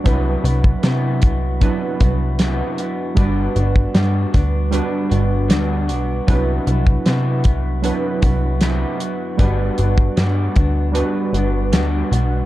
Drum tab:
HH |x-x-x-x-x-x-x-x-|x-x-x-x-x-x-x-x-|x-x-x-x-x-x-x-x-|x-x-x-x-x-x-x-x-|
SD |----o-------o---|----o-o-----o---|----o-------o---|----o-------o---|
BD |o--o--o-o-o-----|o--o--o---------|o--o--o---o-----|o--o--o---------|